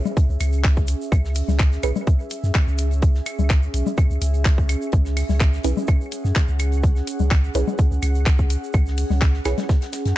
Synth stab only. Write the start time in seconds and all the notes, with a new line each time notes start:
1.83 C#4 E4 G#4 B4
5.64 C#4 E4 G#4 B4
7.55 C#4 E4 G#4 B4
9.45 C#4 E4 G#4 B4